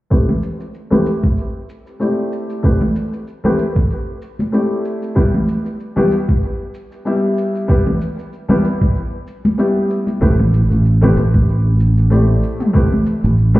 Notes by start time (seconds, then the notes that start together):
0.10 A3 C4 E4 G4 B4, kick, shaker
0.29 high conga, low conga
0.43 shaker
0.60 shaker
0.75 shaker
0.90 A3 C4 E4 G4 B4, muted conga, low conga
1.06 shaker
1.23 kick, muted conga, shaker
1.38 shaker
1.69 shaker
1.87 shaker
2.00 A3 C4 E4 G4 D5, shaker
2.33 shaker
2.50 shaker
2.63 A3 C4 E4 G4 B4, kick, shaker
2.81 high conga, low conga
2.96 shaker
3.13 shaker
3.27 shaker
3.44 A3 C4 E4 G4 B4, muted conga, low conga
3.59 shaker
3.76 kick, muted conga, low conga, shaker
3.91 shaker
4.22 shaker
4.39 muted conga, high conga, shaker
4.52 A3 C4 E4 G4 D5, shaker
4.85 shaker
5.03 shaker
5.15 G3 B3 E4 G4 B4, kick, shaker
5.34 high conga, low conga
5.48 shaker
5.66 shaker
5.80 shaker
5.96 G3 B3 E4 G4 B4, muted conga, low conga
6.11 shaker
6.29 kick, muted conga, shaker
6.43 shaker
6.74 shaker
6.92 shaker
7.05 G3 B3 E4 G4 E5, shaker
7.38 shaker
7.55 shaker
7.68 G3 B3 E4 G4 B4, kick, shaker
7.87 high conga, low conga
8.01 shaker
8.19 shaker
8.33 shaker
8.48 G3 B3 E4 G4 B4, muted conga, low conga
8.65 shaker
8.81 kick, muted conga, low conga, shaker
8.96 shaker
9.27 shaker
9.45 muted conga, high conga, shaker
9.58 G3 B3 E4 G4 E5, shaker
9.76 high conga
9.91 shaker
10.07 muted conga, shaker
10.21 A1 A3 C4 E4 G4 B4, kick, shaker
10.39 high conga, low conga
10.53 shaker
10.71 A1, shaker
10.85 shaker
11.01 A3 C4 E4 G4 B4, muted conga, low conga
11.17 A1, shaker
11.34 kick, muted conga, shaker
11.49 shaker
11.80 shaker
11.97 shaker
12.10 A3 C4 E4 G4 D5, shaker
12.43 shaker
12.60 mid tom, shaker
12.73 A3 C4 E4 G4 B4, kick, shaker
12.92 high conga, low conga
13.06 shaker
13.24 A1, shaker
13.38 shaker
13.54 A3 C4 E4 G4 B4, muted conga, low conga